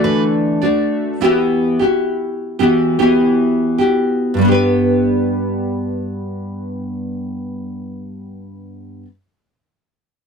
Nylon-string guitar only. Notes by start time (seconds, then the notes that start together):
Already playing: D3 E3 A3 D4 F#4 D5
0.62 A3 D4 F#4 D5
1.21 E3 B3 E4 F#4 G4
1.79 E4 F#4 G4
2.59 E3 B3 E4 F#4 G4
2.99 E3 B3 E4 F#4 G4
3.78 E4 F#4 G4
4.34 G2
4.39 G3 B3
4.45 D4 G4
4.52 B4